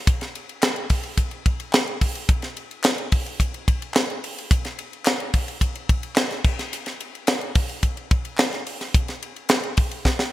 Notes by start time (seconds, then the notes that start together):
0.07 kick, hi-hat pedal, ride
0.21 snare, ride
0.35 ride
0.49 ride
0.62 snare, clap, ride
0.76 ride
0.90 kick, open hi-hat, ride
1.03 ride
1.17 kick, hi-hat pedal, ride
1.31 ride
1.46 kick, ride
1.60 ride
1.73 snare, clap, ride
1.87 ride
2.01 kick, open hi-hat, ride
2.15 ride
2.29 kick, hi-hat pedal, ride
2.42 snare, ride
2.57 ride
2.71 ride
2.84 snare, clap, ride
2.98 ride
3.12 kick, open hi-hat, ride
3.26 ride
3.40 kick, hi-hat pedal, ride
3.54 ride
3.68 kick, ride
3.82 ride
3.94 snare, clap, ride
4.10 ride
4.24 open hi-hat, ride
4.38 ride
4.51 kick, hi-hat pedal, ride
4.65 snare, ride
4.79 ride
4.93 ride
5.05 snare, clap, ride
5.20 ride
5.34 kick, open hi-hat, ride
5.48 ride
5.61 kick, hi-hat pedal, ride
5.75 ride
5.89 kick, ride
6.03 ride
6.16 snare, clap, ride
6.31 snare, ride
6.44 kick, crash
6.59 snare, ride
6.73 hi-hat pedal, ride
6.86 snare, ride
7.00 ride
7.15 ride
7.27 snare, clap, ride
7.41 ride
7.55 kick, open hi-hat, ride
7.69 ride
7.83 kick, hi-hat pedal, ride
7.97 ride
8.11 kick, ride
8.25 ride
8.38 snare, clap, ride
8.52 snare, ride
8.67 open hi-hat, ride
8.81 snare, ride
8.94 kick, hi-hat pedal, ride
9.08 snare, ride
9.22 ride
9.36 ride
9.49 snare, clap, ride
9.63 ride
9.77 kick, open hi-hat, ride
9.91 ride
10.05 kick, snare
10.19 snare